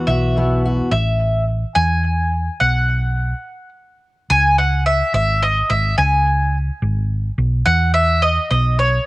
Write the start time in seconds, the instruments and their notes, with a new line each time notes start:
Already playing: steel-string acoustic guitar E2 E3 B3
0.07 fingered electric bass B1, steel-string acoustic guitar F#4, mandolin E5
0.37 steel-string acoustic guitar B2 B3
0.65 steel-string acoustic guitar F#4
0.91 fingered electric bass A1, mandolin E5
1.75 fingered electric bass E2, mandolin G#5
2.60 fingered electric bass B1, mandolin F#5
4.30 fingered electric bass C#2, mandolin G#5
4.58 mandolin F#5
4.86 mandolin E5
5.14 fingered electric bass G#1, mandolin E5
5.42 mandolin D#5
5.70 fingered electric bass G#1, mandolin E5
5.98 fingered electric bass C#2, mandolin G#5
6.82 fingered electric bass G#1
7.38 fingered electric bass B1
7.66 fingered electric bass E2, mandolin F#5
7.94 mandolin E5
8.22 mandolin D#5
8.50 fingered electric bass B1, mandolin D#5
8.79 mandolin C#5